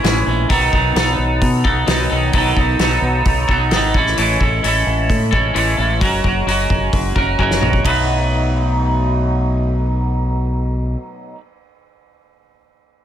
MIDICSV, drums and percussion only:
0, 0, Header, 1, 2, 480
1, 0, Start_track
1, 0, Tempo, 458015
1, 521, Time_signature, 4, 2, 24, 8
1, 13674, End_track
2, 0, Start_track
2, 0, Title_t, "Drums"
2, 45, Note_on_c, 9, 46, 47
2, 51, Note_on_c, 9, 38, 97
2, 150, Note_off_c, 9, 46, 0
2, 156, Note_off_c, 9, 38, 0
2, 521, Note_on_c, 9, 46, 53
2, 523, Note_on_c, 9, 36, 103
2, 626, Note_off_c, 9, 46, 0
2, 628, Note_off_c, 9, 36, 0
2, 764, Note_on_c, 9, 36, 82
2, 869, Note_off_c, 9, 36, 0
2, 1007, Note_on_c, 9, 46, 51
2, 1014, Note_on_c, 9, 38, 105
2, 1112, Note_off_c, 9, 46, 0
2, 1119, Note_off_c, 9, 38, 0
2, 1482, Note_on_c, 9, 46, 45
2, 1485, Note_on_c, 9, 36, 105
2, 1587, Note_off_c, 9, 46, 0
2, 1590, Note_off_c, 9, 36, 0
2, 1726, Note_on_c, 9, 36, 87
2, 1831, Note_off_c, 9, 36, 0
2, 1965, Note_on_c, 9, 46, 49
2, 1971, Note_on_c, 9, 38, 109
2, 2069, Note_off_c, 9, 46, 0
2, 2076, Note_off_c, 9, 38, 0
2, 2443, Note_on_c, 9, 46, 47
2, 2448, Note_on_c, 9, 36, 107
2, 2548, Note_off_c, 9, 46, 0
2, 2553, Note_off_c, 9, 36, 0
2, 2689, Note_on_c, 9, 36, 83
2, 2794, Note_off_c, 9, 36, 0
2, 2927, Note_on_c, 9, 46, 44
2, 2933, Note_on_c, 9, 38, 106
2, 3032, Note_off_c, 9, 46, 0
2, 3038, Note_off_c, 9, 38, 0
2, 3410, Note_on_c, 9, 46, 43
2, 3414, Note_on_c, 9, 36, 103
2, 3515, Note_off_c, 9, 46, 0
2, 3519, Note_off_c, 9, 36, 0
2, 3654, Note_on_c, 9, 36, 76
2, 3759, Note_off_c, 9, 36, 0
2, 3889, Note_on_c, 9, 46, 45
2, 3896, Note_on_c, 9, 38, 103
2, 3994, Note_off_c, 9, 46, 0
2, 4001, Note_off_c, 9, 38, 0
2, 4134, Note_on_c, 9, 36, 99
2, 4238, Note_off_c, 9, 36, 0
2, 4260, Note_on_c, 9, 38, 29
2, 4364, Note_off_c, 9, 38, 0
2, 4375, Note_on_c, 9, 46, 50
2, 4480, Note_off_c, 9, 46, 0
2, 4618, Note_on_c, 9, 36, 80
2, 4723, Note_off_c, 9, 36, 0
2, 4863, Note_on_c, 9, 46, 50
2, 4968, Note_off_c, 9, 46, 0
2, 5341, Note_on_c, 9, 36, 95
2, 5345, Note_on_c, 9, 46, 48
2, 5446, Note_off_c, 9, 36, 0
2, 5450, Note_off_c, 9, 46, 0
2, 5582, Note_on_c, 9, 36, 84
2, 5687, Note_off_c, 9, 36, 0
2, 5824, Note_on_c, 9, 46, 49
2, 5929, Note_off_c, 9, 46, 0
2, 6302, Note_on_c, 9, 36, 103
2, 6304, Note_on_c, 9, 46, 49
2, 6407, Note_off_c, 9, 36, 0
2, 6409, Note_off_c, 9, 46, 0
2, 6542, Note_on_c, 9, 36, 78
2, 6647, Note_off_c, 9, 36, 0
2, 6795, Note_on_c, 9, 46, 44
2, 6900, Note_off_c, 9, 46, 0
2, 7023, Note_on_c, 9, 36, 72
2, 7128, Note_off_c, 9, 36, 0
2, 7262, Note_on_c, 9, 46, 45
2, 7263, Note_on_c, 9, 36, 103
2, 7367, Note_off_c, 9, 36, 0
2, 7367, Note_off_c, 9, 46, 0
2, 7502, Note_on_c, 9, 36, 85
2, 7607, Note_off_c, 9, 36, 0
2, 7743, Note_on_c, 9, 36, 54
2, 7848, Note_off_c, 9, 36, 0
2, 7869, Note_on_c, 9, 38, 54
2, 7974, Note_off_c, 9, 38, 0
2, 7991, Note_on_c, 9, 45, 74
2, 8095, Note_off_c, 9, 45, 0
2, 8103, Note_on_c, 9, 36, 74
2, 8208, Note_off_c, 9, 36, 0
2, 8223, Note_on_c, 9, 36, 63
2, 8230, Note_on_c, 9, 51, 80
2, 8328, Note_off_c, 9, 36, 0
2, 8335, Note_off_c, 9, 51, 0
2, 13674, End_track
0, 0, End_of_file